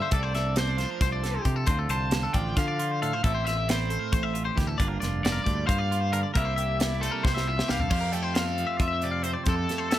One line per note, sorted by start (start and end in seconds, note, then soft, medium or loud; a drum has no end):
0.00 0.12 D4 medium
0.00 0.13 F4 medium
0.00 0.12 C5 medium
0.00 0.13 E5 medium
0.11 0.85 C2 loud
0.11 0.78 C3 medium
0.11 1.69 A3 soft
0.11 0.58 D4 medium
0.11 0.23 A4 medium
0.11 0.34 A4 medium
0.11 0.58 D5 medium
0.11 kick loud
0.11 closed hi-hat medium
0.23 0.34 C5 medium
0.34 1.23 A4 medium
0.34 0.58 E5 medium
0.34 snare soft
0.34 closed hi-hat medium
0.56 0.68 C4 medium
0.56 1.43 C5 medium
0.56 0.79 D5 medium
0.56 snare loud
0.56 closed hi-hat loud
0.68 1.68 D4 soft
0.77 2.34 F3 medium
0.77 0.90 C5 medium
0.77 snare soft
0.77 closed hi-hat medium
0.90 1.01 A#4 medium
1.01 1.37 C2 medium
1.01 1.12 C5 medium
1.01 kick loud
1.01 snare soft
1.01 closed hi-hat medium
1.12 1.35 D5 medium
1.23 1.70 A4 medium
1.23 snare soft
1.23 closed hi-hat medium
1.35 1.46 C5 medium
1.45 1.68 C3 medium
1.45 1.64 C3 medium
1.45 1.56 G4 medium
1.45 kick medium
1.45 closed hi-hat medium
1.56 1.67 A4 medium
1.66 1.86 D2 medium
1.66 3.21 D3 medium
1.66 2.12 C4 medium
1.66 2.13 D4 soft
1.66 1.79 C5 medium
1.66 kick loud
1.66 closed hi-hat medium
1.71 1.90 F4 medium
1.79 1.90 A4 medium
1.89 2.26 C2 medium
1.89 2.78 F4 medium
1.89 2.12 C5 medium
1.89 2.34 A5 loud
1.89 closed hi-hat medium
2.11 2.24 C4 medium
2.11 snare loud
2.11 closed hi-hat medium
2.23 3.24 D4 medium
2.23 2.34 A4 medium
2.34 2.53 A1 medium
2.34 3.24 F3 medium
2.34 2.57 D5 medium
2.34 2.57 G5 medium
2.34 kick medium
2.34 closed hi-hat medium
2.57 3.12 D3 loud
2.57 2.67 C5 medium
2.57 2.99 F5 medium
2.57 kick loud
2.57 snare soft
2.57 closed hi-hat loud
2.68 2.91 D5 medium
2.79 3.24 F4 medium
2.79 closed hi-hat medium
2.91 3.02 C5 medium
3.02 3.21 A2 medium
3.02 3.13 A4 medium
3.02 3.24 F5 medium
3.02 closed hi-hat medium
3.13 3.23 C5 medium
3.24 3.97 A1 loud
3.24 4.77 A2 medium
3.24 4.78 C4 medium
3.24 3.68 E4 medium
3.24 3.47 G4 medium
3.24 3.34 A4 medium
3.24 3.45 E5 medium
3.24 kick loud
3.24 closed hi-hat medium
3.34 3.47 C5 medium
3.46 3.57 F4 medium
3.46 3.69 E5 medium
3.46 3.68 E5 medium
3.46 snare soft
3.46 closed hi-hat medium
3.57 4.33 G4 medium
3.68 4.77 E4 medium
3.68 4.31 C5 medium
3.68 3.90 D5 medium
3.68 snare loud
3.68 closed hi-hat medium
3.90 4.77 A3 medium
3.90 3.99 C5 medium
3.90 closed hi-hat medium
3.99 4.12 A#4 medium
4.12 4.49 A1 medium
4.12 4.23 C5 medium
4.12 kick loud
4.12 closed hi-hat medium
4.23 4.45 E5 medium
4.34 4.46 F4 medium
4.34 closed hi-hat medium
4.45 4.80 G4 medium
4.45 4.57 C5 medium
4.56 4.76 D2 medium
4.56 4.76 E3 medium
4.56 4.67 G4 medium
4.56 kick medium
4.56 snare soft
4.56 closed hi-hat medium
4.67 4.79 A4 medium
4.78 4.98 G1 medium
4.78 6.32 G2 medium
4.78 6.33 A#3 medium
4.78 5.25 D4 medium
4.78 5.02 F4 medium
4.78 4.88 D5 medium
4.78 kick loud
4.78 closed hi-hat medium
4.88 5.00 A#4 medium
5.00 5.39 F1 medium
5.00 5.90 F4 medium
5.00 5.23 D5 medium
5.00 snare soft
5.00 closed hi-hat medium
5.25 6.34 D4 medium
5.25 5.67 D5 medium
5.25 snare loud
5.25 closed hi-hat medium
5.32 5.44 A#4 medium
5.44 5.64 D2 medium
5.44 7.03 G3 medium
5.44 5.66 D5 medium
5.44 kick medium
5.44 closed hi-hat medium
5.67 6.23 G2 medium
5.67 5.78 C5 medium
5.67 6.12 F5 loud
5.67 kick loud
5.67 closed hi-hat medium
5.78 6.01 D5 medium
5.91 6.36 F4 medium
5.91 closed hi-hat medium
6.01 6.12 C5 medium
6.12 6.32 D3 medium
6.12 6.23 A#4 medium
6.12 6.20 F5 loud
6.12 closed hi-hat medium
6.23 6.33 D5 medium
6.34 7.08 C2 medium
6.34 7.91 C3 medium
6.34 7.89 A#3 medium
6.34 6.80 E4 medium
6.34 6.57 G4 medium
6.34 6.45 A#4 medium
6.34 7.44 E5 medium
6.34 kick loud
6.34 closed hi-hat medium
6.45 6.56 C5 medium
6.56 7.47 G4 medium
6.56 6.79 E5 medium
6.56 closed hi-hat medium
6.79 7.90 E4 medium
6.79 7.01 D5 medium
6.79 snare loud
6.79 closed hi-hat loud
7.01 7.89 G3 medium
7.01 7.25 A4 medium
7.01 7.13 C5 medium
7.01 closed hi-hat medium
7.11 7.24 A#4 medium
7.23 7.61 C2 medium
7.23 7.34 C5 medium
7.23 7.48 C5 medium
7.23 kick loud
7.23 snare medium
7.34 7.58 E5 medium
7.34 snare medium
7.47 7.59 F4 medium
7.47 7.70 E5 loud
7.58 7.91 G4 medium
7.58 7.69 C5 medium
7.58 snare medium
7.68 7.88 C2 medium
7.68 7.89 G2 medium
7.68 7.80 G4 medium
7.68 8.12 F5 medium
7.68 snare medium
7.79 7.90 A4 medium
7.79 floor tom medium
7.90 8.64 F2 medium
7.90 9.46 F2 medium
7.90 8.81 G4 medium
7.90 8.00 C5 medium
7.90 kick loud
7.90 crash loud
8.01 8.12 A#4 medium
8.12 9.70 A3 medium
8.12 8.23 A4 medium
8.12 8.35 G5 medium
8.12 closed hi-hat medium
8.23 8.45 C5 medium
8.35 9.26 C4 medium
8.35 8.80 F5 medium
8.35 snare loud
8.35 closed hi-hat medium
8.45 8.68 A4 medium
8.58 9.99 F3 medium
8.58 closed hi-hat medium
8.67 8.77 E5 medium
8.77 9.35 F2 medium
8.77 8.87 D5 medium
8.77 9.04 E5 loud
8.77 kick medium
8.77 closed hi-hat medium
8.82 8.93 F4 medium
8.88 9.11 E5 medium
8.93 9.46 G4 medium
9.02 9.49 C3 medium
9.02 9.24 D5 loud
9.02 closed hi-hat medium
9.11 9.22 F5 medium
9.22 9.91 C4 medium
9.22 9.31 C5 medium
9.22 9.33 E5 medium
9.22 closed hi-hat medium
9.33 9.44 D5 medium
9.44 9.99 F2 medium
9.44 9.65 F2 loud
9.44 9.99 G4 medium
9.44 9.56 C5 medium
9.44 kick loud
9.44 closed hi-hat medium
9.48 9.95 A4 medium
9.56 9.78 A4 medium
9.69 9.99 A3 medium
9.69 snare soft
9.69 closed hi-hat medium
9.78 9.90 C5 medium
9.91 9.99 E4 medium
9.91 9.99 A4 medium
9.91 snare loud
9.91 closed hi-hat medium